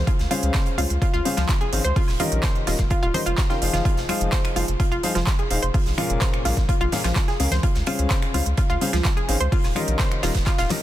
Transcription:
0.07 F4, kick, closed hi-hat
0.19 C#2, snare, closed hi-hat
0.31 C#3 C#4 F4 G#4 C5 F5, closed hi-hat, open hi-hat, high conga
0.43 C#2, closed hi-hat
0.54 C5, kick, snare, clap, closed hi-hat
0.66 closed hi-hat
0.77 C#2 C#3 C#4 F4 G#4 C5 F5, closed hi-hat, open hi-hat, high conga
0.90 C#2, closed hi-hat
1.02 F4, kick, closed hi-hat
1.14 C#2 F4, closed hi-hat
1.25 C#3 C#4 G#4 C5 F5, closed hi-hat, open hi-hat, high conga
1.37 C#2 F3, snare, closed hi-hat
1.49 kick, snare, clap, closed hi-hat
1.61 G#4, closed hi-hat
1.73 G#1 D#3 C#4 G#4 C5 F5, closed hi-hat, open hi-hat
1.84 C#2 C5, closed hi-hat
1.96 F4, kick, closed hi-hat, open hi-hat
2.08 D#1, snare, closed hi-hat, high woodblock
2.20 D#3 C#4 F4 G4 A#4 D#5, closed hi-hat, open hi-hat, high conga, low conga
2.32 A#1, closed hi-hat
2.43 C5, kick, snare, clap, closed hi-hat
2.55 closed hi-hat
2.67 D#1 D#3 C#4 F4 G4 A#4 D#5, snare, closed hi-hat, open hi-hat, high conga
2.78 D#1, kick, snare, closed hi-hat
2.90 F4, kick, closed hi-hat
3.03 D#1 F4, closed hi-hat
3.14 D#3 C#4 G4 A#4 C5 D#5, closed hi-hat, open hi-hat, high conga, low conga
3.26 F1 F4, closed hi-hat, high woodblock
3.38 kick, snare, clap, closed hi-hat
3.50 D#3 C#4 F4 G4 A#4 G5, snare, closed hi-hat
3.62 F1 F3 D#4 G#4 C5 F5, closed hi-hat, open hi-hat
3.73 F1 F4, snare, closed hi-hat, low conga
3.85 F4, kick, closed hi-hat
3.97 F1, snare, closed hi-hat
4.09 F3 D#4 F4 G#4 C5 F5, finger snap, closed hi-hat, open hi-hat, high conga
4.21 F1, closed hi-hat
4.32 C5, finger snap, kick, snare, clap, closed hi-hat
4.45 finger snap, closed hi-hat
4.56 F1 F3 D#4 F4 G#4 C5 F5, closed hi-hat, open hi-hat, high conga
4.68 F1, closed hi-hat
4.80 F4, kick, closed hi-hat
4.92 F1 F4, closed hi-hat
5.03 F3 D#4 G#4 C5 F5, closed hi-hat, open hi-hat, high conga
5.15 F1 F3, snare, closed hi-hat
5.27 kick, snare, clap, closed hi-hat
5.39 G#4, closed hi-hat
5.51 D#1 D#4 G#4 C5 F5, closed hi-hat, open hi-hat
5.63 F1 C5, closed hi-hat
5.74 F4, kick, closed hi-hat, open hi-hat
5.86 A#1, snare, closed hi-hat
5.97 A#2 C#4 F4 G#4 A#4 F5, finger snap, closed hi-hat, open hi-hat, high conga, low conga
6.10 F1, closed hi-hat
6.21 C5, finger snap, kick, snare, clap, closed hi-hat
6.34 finger snap, closed hi-hat
6.45 A#1 A#2 C#4 F4 G#4 A#4 F5, snare, closed hi-hat, open hi-hat, high conga
6.57 A#1, kick, snare, closed hi-hat
6.69 F4, kick, closed hi-hat
6.81 A#1 F4, closed hi-hat
6.92 A#2 C#4 G#4 A#4 F5, snare, closed hi-hat, open hi-hat, high conga, low conga
7.04 A#1 F3, snare, closed hi-hat, high woodblock
7.16 kick, snare, clap, closed hi-hat
7.28 G#4, snare, closed hi-hat
7.40 C#2 C#3 C#4 G#4 A#4 F5, closed hi-hat, open hi-hat
7.51 C#2 C5, snare, closed hi-hat, low conga
7.63 F4, kick, closed hi-hat
7.75 C#2, snare, closed hi-hat
7.87 C#3 C#4 F4 G#4 C5 F5, finger snap, closed hi-hat, open hi-hat, high conga
7.99 C#2, closed hi-hat
8.10 C5, finger snap, kick, snare, clap, closed hi-hat
8.22 finger snap, closed hi-hat
8.34 C#2 C#3 C#4 F4 G#4 C5 F5, closed hi-hat, open hi-hat, high conga
8.46 C#2, closed hi-hat
8.57 F4, kick, closed hi-hat
8.70 C#2 F4, closed hi-hat
8.81 C#3 C#4 G#4 C5 F5, closed hi-hat, open hi-hat, high conga
8.93 C#2 F3, snare, closed hi-hat
9.05 kick, snare, clap, closed hi-hat
9.17 G#4, closed hi-hat
9.28 G#1 D#3 C#4 G#4 C5 F5, closed hi-hat, open hi-hat
9.40 C#2 C5, closed hi-hat
9.52 F4, kick, closed hi-hat, open hi-hat
9.64 D#1, snare, closed hi-hat, high woodblock
9.75 D#3 C#4 F4 G4 A#4 D#5, finger snap, closed hi-hat, open hi-hat, high conga, low conga
9.88 A#1, closed hi-hat
9.99 C5, finger snap, kick, snare, clap, closed hi-hat
10.12 finger snap, closed hi-hat
10.23 D#1 D#3 C#4 F4 G4 A#4 D#5, snare, closed hi-hat, open hi-hat, high conga
10.35 D#1, kick, snare, closed hi-hat
10.46 F4, kick, snare, clap, closed hi-hat
10.58 D#1 F4, snare, closed hi-hat
10.69 D#3 F3 C#4 G4 A#4 D#5, snare, closed hi-hat, open hi-hat, high conga, low conga

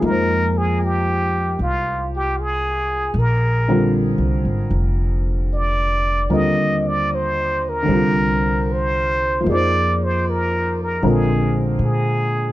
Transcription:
0.00 F2 F3 A#3 D#4
0.05 G#3 A#4
0.10 C5
0.57 G#4
0.84 G4
1.59 C2 F4
2.16 G4
2.40 G#4
3.14 A#1
3.19 A#4
3.68 D3 G3 C4 F4 A#4
4.18 C2
4.45 G#1
4.71 F1
5.54 D5
6.30 D#2 D3 G3 C4 F4 A#4 D#5
6.87 D5
7.15 C5
7.69 A#4
7.83 D3 G3
7.88 C2 C4 F4
7.94 A#4
8.72 C5
9.41 F3 A#3
9.46 F2 D#4 G#4 D5
9.52 C5
10.04 C5
10.30 A#4
10.83 A#4
11.03 A#1 D3 G#3 C4 F4 A#4
11.08 G#4
11.79 A#2
11.85 G#4

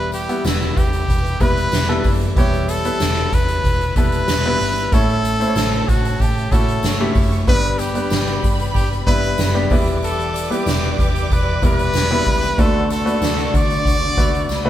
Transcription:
Already playing: E1 E3 G3 B3 E4 G4 B4
0.12 G4, closed hi-hat, tambourine
0.29 G3 B3 E4 F#5, closed hi-hat
0.45 E1 E4, snare, closed hi-hat, tambourine
0.60 closed hi-hat
0.76 E2 G4, kick, closed hi-hat, tambourine
0.93 closed hi-hat
1.08 E1, kick, closed hi-hat, tambourine
1.26 closed hi-hat
1.40 E1 G3 B3 E4 B4, kick, closed hi-hat, tambourine
1.57 closed hi-hat
1.72 E1, snare, closed hi-hat, tambourine
1.89 G3 B3 E4 A4
2.04 F#1 E3 A4, kick, open hi-hat, tambourine
2.21 closed hi-hat
2.36 E1 G3 B3 E4 G4 C#5, kick, closed hi-hat, tambourine
2.53 closed hi-hat
2.68 A4, snare, closed hi-hat, tambourine
2.84 G3 B3 E4 B4, closed hi-hat
3.00 E1, snare, closed hi-hat, tambourine
3.16 closed hi-hat
3.32 E2 B4, kick, closed hi-hat, tambourine
3.48 closed hi-hat
3.64 E1, kick, closed hi-hat, tambourine
3.81 closed hi-hat
3.96 E1 G3 B3 E4 A4 B4, kick, closed hi-hat, tambourine
4.12 closed hi-hat
4.28 E1, snare, closed hi-hat, tambourine
4.46 G3 B3 E4 B4
4.60 G1, open hi-hat, tambourine
4.76 closed hi-hat
4.91 A1 A2 A3 C#4 E4 A4 C#5 A5, kick, closed hi-hat, tambourine
5.09 closed hi-hat
5.24 snare, closed hi-hat, tambourine
5.40 A3 C#4 E4 C5, closed hi-hat
5.47 C#5
5.56 A1, snare, closed hi-hat, tambourine
5.72 closed hi-hat
5.88 A2 F#4, kick, closed hi-hat, tambourine
6.05 closed hi-hat
6.19 A1 G4, kick, closed hi-hat, tambourine
6.38 closed hi-hat
6.51 A1 A3 C#4 E4 F#4 A4, kick, closed hi-hat, tambourine
6.68 closed hi-hat
6.83 G1 C#5 C#6, snare, closed hi-hat, tambourine
7.00 A3 C#4 E4 G4
7.15 F#1, kick, open hi-hat, tambourine
7.32 closed hi-hat
7.46 G1 G2 G3 B3 D4 G4 B4 B5, kick, closed hi-hat, tambourine
7.64 closed hi-hat
7.78 G4, snare, closed hi-hat, tambourine
7.95 G3 B3 D4 B4, closed hi-hat
8.10 G1, snare, closed hi-hat, tambourine
8.27 closed hi-hat
8.42 G2, kick, closed hi-hat, tambourine
8.59 closed hi-hat
8.74 G1 G4, kick, closed hi-hat, tambourine
8.93 closed hi-hat
9.07 G1 G3 B3 D4 E4 B4, kick, closed hi-hat, tambourine
9.23 closed hi-hat
9.38 F#1, snare, closed hi-hat, tambourine
9.54 G3 B3 D4 G4, closed hi-hat
9.70 E1 E3 G3 B3 E4 B4 D5 D6, kick, open hi-hat, tambourine
9.87 closed hi-hat
10.02 A4, closed hi-hat, tambourine
10.20 closed hi-hat
10.34 closed hi-hat, tambourine
10.50 G3 B3 E4 G4 B4, closed hi-hat
10.66 E1, snare, closed hi-hat, tambourine
10.83 closed hi-hat
10.98 E2 G4, kick, closed hi-hat, tambourine
11.16 closed hi-hat
11.30 E1 B4, kick, closed hi-hat, tambourine
11.62 E1 G3 B3 E4 B4, kick, closed hi-hat, tambourine
11.79 closed hi-hat
11.93 E1, snare, closed hi-hat, tambourine
12.11 G3 B3 E4 B4, closed hi-hat
12.25 C#2, kick, open hi-hat, tambourine
12.43 closed hi-hat
12.57 D2 D3 A3 B3 D4 F#4 A4 B4 D5 C#6, kick, closed hi-hat, tambourine
12.90 A4, snare, closed hi-hat, tambourine
13.05 A3 D4 F#4 B4, closed hi-hat
13.22 D2, snare, closed hi-hat, tambourine
13.37 closed hi-hat
13.54 D3 D5, kick, closed hi-hat, tambourine
13.70 closed hi-hat
13.85 D2, kick, closed hi-hat, tambourine
14.17 D2 A3 D4 F#4 B4, kick, closed hi-hat, tambourine
14.34 closed hi-hat
14.49 C#2 B4 B5, snare, tambourine
14.64 A3 D4 F#4 B4, high tom

